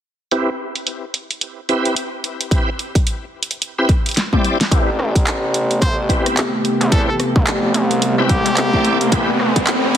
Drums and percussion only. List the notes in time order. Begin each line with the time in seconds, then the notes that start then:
0.31 closed hi-hat
0.75 closed hi-hat
0.87 closed hi-hat
1.14 closed hi-hat
1.31 closed hi-hat
1.41 closed hi-hat
1.69 closed hi-hat
1.85 closed hi-hat
1.96 closed hi-hat
2.24 closed hi-hat
2.41 closed hi-hat
2.51 kick, closed hi-hat
2.79 closed hi-hat
2.95 kick, closed hi-hat
3.07 closed hi-hat
3.43 closed hi-hat
3.51 closed hi-hat
3.62 closed hi-hat
3.89 kick, closed hi-hat
4.06 closed hi-hat
4.09 closed hi-hat
4.11 closed hi-hat
4.14 snare, closed hi-hat
4.17 closed hi-hat
4.33 kick, high tom
4.45 closed hi-hat
4.61 snare, closed hi-hat
4.71 kick, closed hi-hat
4.99 cross-stick
5.16 kick, closed hi-hat
5.27 clap, closed hi-hat
5.54 closed hi-hat
5.71 closed hi-hat
5.82 kick, cross-stick, closed hi-hat
6.09 kick, closed hi-hat
6.26 cross-stick, closed hi-hat
6.37 clap, closed hi-hat
6.65 closed hi-hat
6.81 closed hi-hat
6.92 kick, closed hi-hat
7.20 cross-stick, closed hi-hat
7.36 kick
7.47 clap, closed hi-hat
7.74 closed hi-hat
7.91 closed hi-hat
8.02 closed hi-hat
8.29 kick, closed hi-hat
8.46 closed hi-hat
8.57 clap, closed hi-hat
8.73 kick
8.85 closed hi-hat
9.01 closed hi-hat
9.12 kick, closed hi-hat
9.40 cross-stick
9.56 kick, closed hi-hat
9.67 clap, closed hi-hat